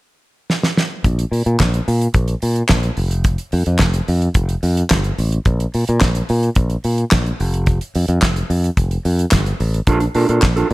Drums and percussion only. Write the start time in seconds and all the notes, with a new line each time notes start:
0.50 snare
0.63 snare
0.77 snare
1.04 kick, closed hi-hat
1.19 closed hi-hat
1.33 open hi-hat
1.46 closed hi-hat
1.60 kick, snare, clap, closed hi-hat
1.74 closed hi-hat
1.88 open hi-hat
2.02 closed hi-hat
2.14 kick, closed hi-hat
2.28 closed hi-hat
2.42 open hi-hat
2.56 closed hi-hat
2.69 kick, snare, clap, closed hi-hat
2.83 closed hi-hat
2.97 open hi-hat
3.11 closed hi-hat
3.24 kick, closed hi-hat
3.38 closed hi-hat
3.52 open hi-hat
3.66 closed hi-hat
3.79 kick, snare, clap, closed hi-hat
3.94 closed hi-hat
4.08 open hi-hat
4.22 closed hi-hat
4.34 kick, closed hi-hat
4.49 closed hi-hat
4.63 open hi-hat
4.77 closed hi-hat
4.90 kick, snare, clap, closed hi-hat
5.04 closed hi-hat
5.18 open hi-hat
5.32 closed hi-hat
5.45 kick, closed hi-hat
5.60 closed hi-hat
5.74 open hi-hat
5.88 closed hi-hat
6.01 kick, snare, clap, closed hi-hat
6.15 closed hi-hat
6.29 open hi-hat
6.43 closed hi-hat
6.55 kick, closed hi-hat
6.70 closed hi-hat
6.84 open hi-hat
6.98 closed hi-hat
7.11 kick, snare, clap, closed hi-hat
7.26 closed hi-hat
7.40 open hi-hat
7.54 closed hi-hat
7.66 kick, closed hi-hat
7.81 closed hi-hat
7.95 open hi-hat
8.08 closed hi-hat
8.22 kick, snare, clap, closed hi-hat
8.36 closed hi-hat
8.50 open hi-hat
8.64 closed hi-hat
8.77 kick, closed hi-hat
8.91 closed hi-hat
9.05 open hi-hat
9.19 closed hi-hat
9.31 kick, snare, clap, closed hi-hat
9.46 closed hi-hat
9.60 open hi-hat
9.74 closed hi-hat
9.87 kick, closed hi-hat
10.00 closed hi-hat
10.15 open hi-hat
10.29 closed hi-hat
10.42 kick, snare, clap, closed hi-hat
10.57 closed hi-hat